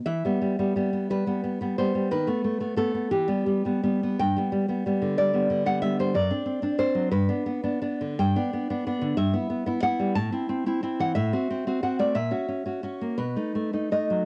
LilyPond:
\new Staff \with { instrumentName = "Nylon-string guitar" } { \time 6/8 \key e \minor \tempo 4. = 60 << { e''4. b'4 c''8 | b'4 a'8 g'4. | g''4. d''8. fis''16 e''16 c''16 | d''4 c''8 b'4. |
g''4. e''4 fis''8 | a''4~ a''16 fis''16 e''4 fis''16 d''16 | e''4. b'4 dis''8 | } \\ { e16 <g b>16 g16 <g b>16 <g b>16 b16 g16 <g b>16 b16 <g b>16 <g b>16 g16 | dis16 <a b>16 a16 <a b>16 <a b>16 b16 e16 <g b>16 g16 <g b>16 <g b>16 b16 | g,16 <g b>16 g16 <g b>16 <g b>16 d16 g16 <g b>16 d16 <g b>16 <g b>16 g16 | fis,16 <c' d'>16 c'16 <c' d'>16 <c' d'>16 fis16 g,16 <b d'>16 b16 <b d'>16 <b d'>16 d16 |
g,16 <b d'>16 b16 <b d'>16 <b d'>16 d16 g,16 <b e'>16 b16 <b e'>16 <b e'>16 g16 | a,16 <c' e'>16 c'16 <c' e'>16 <c' e'>16 e16 a,16 <c' fis'>16 c'16 <c' fis'>16 <c' fis'>16 a16 | ais,16 <cis' fis'>16 cis'16 <cis' fis'>16 <cis' fis'>16 ais16 b,16 <a dis'>16 a16 <a dis'>16 <a dis'>16 fis16 | } >> }